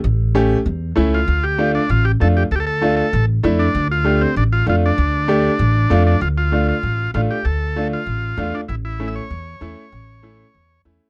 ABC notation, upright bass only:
X:1
M:4/4
L:1/8
Q:1/4=194
K:Dm
V:1 name="Upright bass" clef=bass
A,,,4 E,,2 ^C,,2 | D,,4 A,,,2 F,,2 | D,,4 A,,,2 F,,2 | D,,4 A,,,2 F,,2 |
D,,4 A,,,2 F,,2 | D,,4 A,,,2 A,,, z | D,,4 A,,,2 E,, z | A,,,4 E,,2 E,, z |
A,,,4 E,,2 E,, z |]